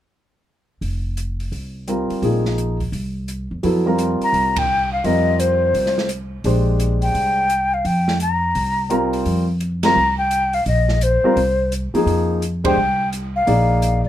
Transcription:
0.81 1.48 F1 medium
0.81 open hi-hat soft
1.17 closed hi-hat soft
1.40 open hi-hat soft
1.52 2.06 C2 medium
1.52 open hi-hat soft
1.88 2.41 G3 soft
1.88 2.41 C4 soft
1.88 2.41 F4 soft
1.88 2.41 A#4 medium
1.88 closed hi-hat soft
2.10 muted upright bass stroke soft
2.10 open hi-hat soft
2.22 2.89 A#1 medium
2.22 2.76 F3 soft
2.22 2.76 A#3 soft
2.22 2.76 D#4 soft
2.22 2.76 G#4 medium
2.22 open hi-hat soft
2.45 snare soft
2.58 closed hi-hat soft
2.80 kick soft
2.80 open hi-hat soft
2.92 3.46 C2 medium
2.92 open hi-hat soft
3.28 closed hi-hat soft
3.51 3.63 E2 medium
3.63 4.17 F2 medium
3.63 3.83 F#3 medium
3.63 3.84 B3 soft
3.63 3.84 E4 soft
3.63 3.84 A4 medium
3.63 open hi-hat soft
3.86 4.61 G3 medium
3.86 4.61 C4 medium
3.86 4.61 F4 medium
3.86 4.62 A#4 medium
3.98 closed hi-hat soft
4.21 4.60 A#5 medium
4.21 muted upright bass stroke soft
4.21 open hi-hat soft
4.33 5.00 C2 medium
4.33 open hi-hat soft
4.56 4.92 G5 medium
4.56 kick medium
4.56 ride medium
4.93 5.07 F5 medium
5.04 5.71 F2 medium
5.04 6.02 G3 soft
5.04 6.02 C4 soft
5.04 6.02 F4 soft
5.04 6.03 A#4 medium
5.04 5.41 D#5 medium
5.04 open hi-hat soft
5.40 6.10 C5 medium
5.40 closed hi-hat soft
5.74 6.41 C2 medium
5.74 open hi-hat soft
5.86 snare soft
5.98 snare soft
6.09 closed hi-hat soft
6.44 7.11 A#1 medium
6.44 7.42 G#3 soft
6.44 7.43 D4 soft
6.44 7.43 G4 soft
6.44 7.43 C5 medium
6.44 open hi-hat soft
6.80 closed hi-hat soft
7.02 7.75 G5 medium
7.02 open hi-hat soft
7.15 7.81 C2 medium
7.15 open hi-hat soft
7.50 closed hi-hat soft
7.74 7.88 F5 medium
7.85 8.51 F2 medium
7.85 8.21 G5 medium
7.85 open hi-hat soft
8.08 snare soft
8.20 9.10 A#5 medium
8.20 closed hi-hat soft
8.55 9.22 C2 medium
8.55 open hi-hat soft
8.90 9.43 G3 medium
8.90 9.43 C4 medium
8.90 9.44 F4 medium
8.90 9.44 A#4 medium
8.90 closed hi-hat soft
9.13 open hi-hat soft
9.26 9.92 F2 medium
9.26 open hi-hat soft
9.60 closed hi-hat soft
9.83 9.95 G3 medium
9.83 9.95 C4 medium
9.83 9.95 F4 soft
9.83 9.95 A#4 medium
9.83 10.16 A#5 medium
9.83 snare medium
9.83 ride medium
9.96 10.62 C2 medium
10.18 10.56 G5 medium
10.31 closed hi-hat soft
10.53 10.66 F5 medium
10.53 open hi-hat soft
10.66 11.20 A#1 medium
10.66 11.05 D#5 medium
10.66 open hi-hat soft
10.89 snare soft
11.01 11.72 C5 medium
11.01 closed hi-hat soft
11.23 11.35 G3 medium
11.23 11.35 C4 medium
11.23 11.36 F4 medium
11.23 11.36 A#4 medium
11.23 muted upright bass stroke soft
11.36 11.90 C2 medium
11.36 open hi-hat soft
11.72 closed hi-hat soft
11.94 12.39 F3 medium
11.94 12.39 A#3 medium
11.94 12.40 D#4 medium
11.94 12.40 G#4 medium
11.94 muted upright bass stroke soft
11.94 open hi-hat soft
12.06 12.73 F2 medium
12.06 open hi-hat soft
12.42 closed hi-hat soft
12.64 12.75 G#3 medium
12.64 12.76 D4 medium
12.64 12.76 G4 medium
12.64 12.76 C5 medium
12.64 13.10 G5 medium
12.64 kick medium
12.64 ride medium
12.77 13.43 C2 medium
13.13 closed hi-hat soft
13.36 14.01 F5 medium
13.47 14.01 A#1 medium
13.47 14.00 A#3 medium
13.47 14.00 D#4 soft
13.47 14.00 G#4 soft
13.47 14.00 D5 medium
13.47 open hi-hat soft
13.82 closed hi-hat soft
14.04 14.09 G1 medium
14.04 14.09 D#5 medium

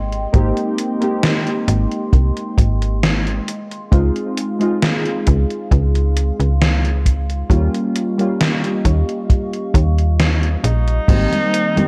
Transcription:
0.00 0.27 G#1 medium
0.00 3.44 G#3 medium
0.00 0.28 A#3 medium
0.00 0.29 C4 medium
0.00 0.29 D#4 medium
0.00 0.30 G4 medium
0.00 3.44 D#5 medium
0.00 3.44 G5 medium
0.00 7.46 C6 medium
0.12 closed hi-hat soft
0.33 0.52 G#1 medium
0.33 0.96 A#3 medium
0.33 0.96 C4 medium
0.33 0.97 D#4 medium
0.33 0.97 G4 medium
0.33 kick loud
0.33 closed hi-hat medium
0.57 closed hi-hat soft
0.78 closed hi-hat medium
1.00 3.44 A#3 medium
1.00 3.45 C4 medium
1.00 3.45 D#4 medium
1.00 3.46 G4 medium
1.00 closed hi-hat soft
1.23 snare loud
1.23 closed hi-hat medium
1.47 closed hi-hat soft
1.68 1.87 G#1 medium
1.68 closed hi-hat medium
1.92 closed hi-hat soft
2.13 2.31 C2 medium
2.13 kick loud
2.13 closed hi-hat medium
2.37 closed hi-hat soft
2.58 3.40 G#1 medium
2.58 kick loud
2.58 closed hi-hat medium
2.82 closed hi-hat soft
3.03 snare loud
3.03 closed hi-hat medium
3.27 closed hi-hat soft
3.48 7.47 G#4 medium
3.48 7.47 F5 medium
3.48 closed hi-hat medium
3.71 closed hi-hat soft
3.91 4.11 C#2 medium
3.91 4.54 G#3 medium
3.91 4.55 C4 medium
3.91 4.55 D#4 medium
3.91 4.55 F4 medium
3.91 kick loud
3.91 closed hi-hat medium
4.16 closed hi-hat soft
4.37 closed hi-hat medium
4.59 7.45 G#3 medium
4.59 7.45 C4 medium
4.59 7.46 D#4 medium
4.59 7.46 F4 medium
4.59 closed hi-hat soft
4.82 snare loud
4.82 closed hi-hat medium
5.06 closed hi-hat soft
5.27 5.45 C#2 loud
5.27 kick medium
5.27 closed hi-hat medium
5.50 closed hi-hat soft
5.71 6.32 C#2 loud
5.71 kick loud
5.71 closed hi-hat medium
5.95 closed hi-hat soft
6.17 closed hi-hat medium
6.40 7.43 C#2 medium
6.40 closed hi-hat soft
6.62 snare loud
6.62 closed hi-hat medium
6.85 closed hi-hat soft
7.06 kick medium
7.06 closed hi-hat medium
7.30 closed hi-hat soft
7.49 7.68 D#2 medium
7.49 8.13 G3 medium
7.49 8.13 A#3 medium
7.49 8.13 C#4 medium
7.49 8.13 F4 medium
7.49 11.06 G4 medium
7.49 11.06 D#5 medium
7.49 11.06 F5 medium
7.49 11.06 C#6 medium
7.49 kick loud
7.49 closed hi-hat medium
7.74 closed hi-hat soft
7.96 closed hi-hat medium
8.18 11.03 G3 medium
8.18 11.04 A#3 medium
8.18 11.04 C#4 medium
8.18 11.05 F4 medium
8.18 closed hi-hat soft
8.41 snare loud
8.41 closed hi-hat medium
8.64 closed hi-hat soft
8.85 9.03 D#2 loud
8.85 kick medium
8.85 closed hi-hat medium
9.09 closed hi-hat soft
9.30 kick loud
9.30 closed hi-hat medium
9.53 closed hi-hat soft
9.74 10.57 D#2 loud
9.74 kick loud
9.74 closed hi-hat medium
9.98 closed hi-hat soft
10.20 snare loud
10.20 closed hi-hat medium
10.43 closed hi-hat soft
10.64 11.00 A#1 medium
10.64 11.88 D#4 loud
10.64 closed hi-hat medium
10.88 closed hi-hat soft
11.08 11.27 G#1 medium
11.08 11.71 D#3 medium
11.08 11.71 G3 medium
11.08 11.88 G3 medium
11.08 11.72 A#3 medium
11.08 11.72 C4 medium
11.08 11.88 D#5 medium
11.08 11.88 G5 medium
11.08 11.88 C6 medium
11.08 kick loud
11.08 closed hi-hat medium
11.08 crash medium
11.08 high conga soft
11.33 closed hi-hat soft
11.33 high conga soft
11.54 closed hi-hat loud
11.75 11.88 D#3 medium
11.75 11.88 G3 medium
11.75 11.88 A#3 medium
11.75 11.88 C4 medium
11.75 closed hi-hat soft
11.75 high conga medium

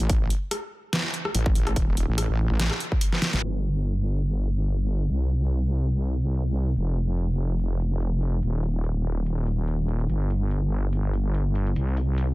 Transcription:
0.00 0.08 A1 medium
0.00 closed hi-hat soft
0.10 0.29 A1 loud
0.10 kick loud
0.10 closed hi-hat medium
0.30 closed hi-hat medium
0.51 cross-stick medium
0.51 closed hi-hat medium
0.93 snare loud
0.93 closed hi-hat medium
1.14 closed hi-hat medium
1.25 cross-stick medium
1.35 1.54 A1 loud
1.35 closed hi-hat medium
1.46 kick loud
1.55 1.75 A1 loud
1.55 closed hi-hat medium
1.67 cross-stick medium
1.67 closed hi-hat soft
1.76 2.07 D#1 medium
1.76 kick loud
1.76 closed hi-hat medium
1.97 closed hi-hat medium
2.08 2.27 A1 loud
2.18 cross-stick medium
2.18 closed hi-hat medium
2.29 2.48 A1 loud
2.50 2.69 A1 loud
2.60 snare loud
2.60 closed hi-hat medium
2.71 cross-stick medium
2.80 closed hi-hat medium
2.92 kick medium
3.01 closed hi-hat medium
3.12 snare soft
3.22 snare medium
3.22 closed hi-hat medium
3.33 3.41 A1 loud
3.33 snare medium
3.33 closed hi-hat soft
3.43 5.08 G1 medium
3.43 closed hi-hat medium
3.64 closed hi-hat medium
3.85 closed hi-hat medium
4.26 closed hi-hat medium
4.47 closed hi-hat soft
4.68 closed hi-hat medium
4.89 closed hi-hat medium
5.00 closed hi-hat soft
5.09 6.74 C2 medium
5.09 closed hi-hat medium
5.30 closed hi-hat medium
5.51 closed hi-hat medium
5.93 closed hi-hat medium
6.14 closed hi-hat soft
6.35 closed hi-hat medium
6.55 closed hi-hat medium
6.67 closed hi-hat soft
6.76 8.41 F1 medium
6.76 closed hi-hat medium
6.97 closed hi-hat medium
7.18 closed hi-hat medium
7.60 closed hi-hat medium
7.80 closed hi-hat medium
8.01 closed hi-hat medium
8.22 closed hi-hat soft
8.33 closed hi-hat soft
8.43 10.08 D#1 medium
8.43 closed hi-hat medium
8.64 closed hi-hat soft
8.85 closed hi-hat medium
9.26 closed hi-hat medium
9.47 closed hi-hat soft
9.68 closed hi-hat medium
9.89 closed hi-hat soft
10.00 closed hi-hat soft
10.10 11.74 G1 medium
10.10 closed hi-hat medium
10.30 closed hi-hat soft
10.51 closed hi-hat medium
10.93 closed hi-hat medium
11.14 closed hi-hat soft
11.35 closed hi-hat medium
11.55 closed hi-hat soft
11.67 closed hi-hat soft
11.76 12.34 C2 medium
11.76 closed hi-hat medium
11.97 closed hi-hat soft
12.18 closed hi-hat medium

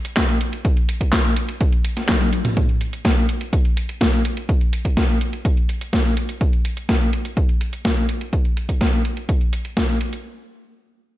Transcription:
0.05 closed hi-hat medium
0.17 kick loud
0.17 snare loud
0.17 clap medium
0.17 closed hi-hat medium
0.29 closed hi-hat soft
0.41 closed hi-hat loud
0.53 closed hi-hat medium
0.65 kick loud
0.65 closed hi-hat medium
0.77 closed hi-hat soft
0.89 closed hi-hat loud
1.01 kick medium
1.01 closed hi-hat medium
1.13 kick loud
1.13 snare loud
1.13 clap medium
1.13 closed hi-hat medium
1.25 closed hi-hat soft
1.37 closed hi-hat loud
1.49 closed hi-hat medium
1.61 kick loud
1.61 closed hi-hat medium
1.73 closed hi-hat soft
1.85 closed hi-hat loud
1.97 snare soft
1.97 closed hi-hat medium
2.09 kick loud
2.09 snare loud
2.09 clap loud
2.09 closed hi-hat medium
2.09 high tom medium
2.21 closed hi-hat soft
2.21 high tom medium
2.33 closed hi-hat loud
2.45 closed hi-hat medium
2.45 mid tom medium
2.57 kick loud
2.57 closed hi-hat medium
2.69 closed hi-hat soft
2.81 closed hi-hat medium
2.93 closed hi-hat medium
3.05 kick loud
3.05 snare loud
3.05 closed hi-hat medium
3.17 closed hi-hat soft
3.29 closed hi-hat medium
3.41 closed hi-hat medium
3.53 kick loud
3.53 closed hi-hat medium
3.65 closed hi-hat soft
3.77 closed hi-hat loud
3.89 closed hi-hat medium
4.01 kick loud
4.01 snare loud
4.01 closed hi-hat medium
4.13 closed hi-hat soft
4.25 closed hi-hat loud
4.37 closed hi-hat medium
4.49 kick loud
4.49 closed hi-hat soft
4.61 closed hi-hat soft
4.73 closed hi-hat medium
4.85 kick medium
4.85 closed hi-hat medium
4.97 kick loud
4.97 snare loud
4.97 closed hi-hat soft
5.09 closed hi-hat soft
5.21 closed hi-hat medium
5.33 closed hi-hat medium
5.45 kick loud
5.45 closed hi-hat medium
5.57 closed hi-hat soft
5.69 closed hi-hat medium
5.81 closed hi-hat medium
5.93 kick loud
5.93 snare loud
5.93 closed hi-hat medium
6.05 closed hi-hat soft
6.17 closed hi-hat medium
6.29 closed hi-hat medium
6.41 kick loud
6.41 closed hi-hat soft
6.53 closed hi-hat soft
6.65 closed hi-hat medium
6.77 closed hi-hat soft
6.89 kick loud
6.89 snare loud
6.89 closed hi-hat soft
7.01 closed hi-hat soft
7.13 closed hi-hat medium
7.25 closed hi-hat soft
7.37 kick loud
7.37 closed hi-hat soft
7.49 closed hi-hat soft
7.61 closed hi-hat medium
7.73 closed hi-hat soft
7.85 kick loud
7.85 snare loud
7.85 closed hi-hat soft
7.97 closed hi-hat soft
8.09 closed hi-hat medium
8.21 closed hi-hat soft
8.33 kick loud
8.33 closed hi-hat soft
8.45 closed hi-hat soft
8.57 closed hi-hat medium
8.69 kick medium
8.69 closed hi-hat soft
8.81 kick loud
8.81 snare loud
8.81 closed hi-hat soft
8.93 closed hi-hat soft
9.05 closed hi-hat medium
9.17 closed hi-hat soft
9.29 kick loud
9.29 closed hi-hat soft
9.41 closed hi-hat soft
9.53 closed hi-hat medium
9.65 closed hi-hat soft
9.77 kick loud
9.77 snare loud
9.77 closed hi-hat soft
9.89 closed hi-hat soft
10.01 closed hi-hat medium
10.13 closed hi-hat soft

